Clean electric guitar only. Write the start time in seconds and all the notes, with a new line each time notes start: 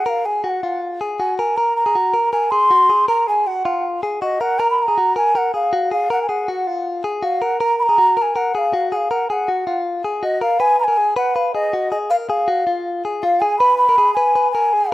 0.06 A#4
0.25 G#4
0.44 F#4
0.63 F4
1.01 G#4
1.20 F#4
1.39 A#4
1.58 A#4
1.86 G#4
1.95 F#4
2.14 A#4
2.33 A#4
2.52 G#4
2.71 F#4
2.89 G#4
3.08 A#4
3.27 G#4
3.46 F#4
3.65 F4
4.03 G#4
4.22 F#4
4.41 A#4
4.60 A#4
4.88 G#4
4.98 F#4
5.16 A#4
5.35 A#4
5.54 G#4
5.73 F#4
5.91 G#4
6.10 A#4
6.29 G#4
6.48 F#4
6.67 F4
7.04 G#4
7.23 F#4
7.42 A#4
7.61 A#4
7.89 G#4
7.98 F#4
8.17 A#4
8.36 A#4
8.55 G#4
8.73 F#4
8.92 G#4
9.11 A#4
9.30 G#4
9.48 F#4
9.67 F4
10.04 G#4
10.23 F#4
10.41 A#4
10.60 B4
10.88 A#4
10.97 G#4
11.16 B4
11.36 B4
11.55 G#4
11.73 F#4
11.92 G#4
12.11 A#4
12.30 G#4
12.48 F#4
12.67 F4
13.05 G#4
13.23 F4
13.42 G#4
13.60 B4
13.89 A#4
13.98 G#4
14.17 B4
14.35 B4
14.55 A#4
14.73 G#4